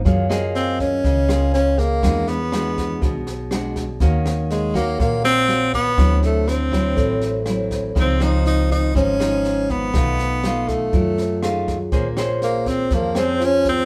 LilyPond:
<<
  \new Staff \with { instrumentName = "Tine electric piano" } { \time 4/4 \key bes \minor \tempo 4 = 121 r8 ees''2 des''4 aes'8~ | aes'8 r4. fis'2~ | fis'8 r2. r8 | r2 a'2 |
r1 | r2 eis'4 aes'4~ | aes'8 r2 r8 f'4 | }
  \new Staff \with { instrumentName = "Nylon-string guitar" } { \time 4/4 \key bes \minor << { <bes f' aes'>8 <bes f' aes'>2 <bes f' aes'>4. | <gis d' fis'>8 r8 <gis d' fis'>4. r8 <gis d' fis'>8 r8 | <bes des' ges'>4. <bes des' ges'>4. <bes des' ges'>4 | <fis c' e'>4. <fis c' e'>4. <fis c' e'>4 |
<f c' ees'>8 <f c' ees'>4. <f c' ees'>8 <f ees'>4. | <a dis' eis'>4 <a dis' eis'>4. r8 <a dis' eis'>8 r8 | <des' aes' c''>8 <des' aes' c''>2 <des' aes' c''>4. | } \\ { ges2 des2 | e2 b,2 | ees2 bes,2 | d2 a,2 |
des2 aes,2 | b,2 fis2 | bes2 f2 | } >> }
  \new Staff \with { instrumentName = "Tenor saxophone" } { \time 4/4 \key bes \minor r4 c'8 des'4. des'8 bes8~ | bes8 b2 r4. | r4 aes8 bes8 bes8 c'4 ces'8~ | ces'8 a8 c'2 r4 |
c'8 ees'8 ees'8 ees'8 des'4. ces'8~ | ces'4. a2 r8 | r4 bes8 c'8 bes8 c'8 des'8 c'8 | }
  \new Staff \with { instrumentName = "Upright bass" } { \clef bass \time 4/4 \key bes \minor ges,2 des,2 | e,2 b,,2 | ees,2 bes,,2 | d,2 a,,2 |
des,2 aes,,2 | b,,2 fis,2 | bes,,2 f,2 | }
  \new DrumStaff \with { instrumentName = "Drums" } \drummode { \time 4/4 <bd sn>8 <ss sn>8 sn8 <bd sn>8 <bd sn>8 <ss sn>8 sn8 <bd sn>8 | <bd ss sn>8 sn8 <ss sn>8 <bd sn>8 <bd sn>8 sn8 <ss sn>8 <bd sn>8 | <bd sn>8 <ss sn>8 sn8 <bd sn>8 <bd sn>8 <ss sn>8 sn8 <bd sn>8 | <bd ss sn>8 sn8 <ss sn>8 <bd sn>8 <bd sn>8 sn8 <ss sn>8 <bd sn>8 |
<bd sn>8 <ss sn>8 sn8 <bd sn>8 <bd sn>8 <ss sn>8 sn8 <bd sn>8 | <bd ss sn>8 sn8 <ss sn>8 <bd sn>8 <bd sn>8 sn8 <ss sn>8 <bd sn>8 | <bd sn>8 <ss sn>8 sn8 <bd sn>8 <bd sn>8 <ss sn>8 sn8 <bd sn>8 | }
>>